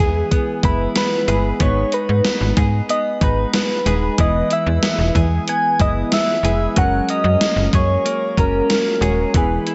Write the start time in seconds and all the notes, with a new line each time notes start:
Already playing: E3 G#3 B3 E4 G#4 B4
0.00 E2 G#4
0.31 B3, kick, closed hi-hat
0.63 F#1 G#3 B3 E4 B4, kick, closed hi-hat
0.95 B3 B4, snare, closed hi-hat
1.27 G1 G#3 B3 E4 G#4 B4, closed hi-hat
1.59 G#1 G#3 B3 D#4 B4 C#5, kick, closed hi-hat
1.92 D#4 B4, closed hi-hat
2.09 G#2
2.24 B3, snare, closed hi-hat
2.41 G#1
2.57 G#2 G#4, kick, closed hi-hat
2.89 B3 D#5, closed hi-hat
3.21 G#1 G#3 B3 D#4 B4, kick, closed hi-hat
3.53 B3 B4, snare, closed hi-hat
3.86 D#1 G#3 B3 D#4 G#4 B4, closed hi-hat
4.18 E1 E3 G#3 B3 E4 B4 D#5, kick, closed hi-hat
4.50 E4 E5, closed hi-hat
4.66 E2
4.83 B3, snare, closed hi-hat
4.98 E1
5.15 E2 G#4, kick, closed hi-hat
5.48 B3 G#5, closed hi-hat
5.79 F#1 G#3 B3 E4 B4 D#5, kick, closed hi-hat
6.12 B3 E5, snare, closed hi-hat
6.43 F1 G#3 B3 E4 G#4 B4, closed hi-hat
6.76 F#1 F#3 G#3 C#4 F#4 A#4 F#5, kick, closed hi-hat
7.09 C#4 D#5, closed hi-hat
7.24 F#2
7.41 A#3, snare, closed hi-hat
7.56 F#1
7.73 F#2 G#4 C#5, kick, closed hi-hat
8.05 A#3, closed hi-hat
8.37 F#1 G#3 C#4 F#4 A#4, kick, closed hi-hat
8.70 A#3 A#4, snare, closed hi-hat
9.01 D#1 G#3 C#4 F#4 G#4 C#5, closed hi-hat
9.34 E1 E3 G#3 B3 E4 G#4 B4, kick, closed hi-hat
9.67 E4, closed hi-hat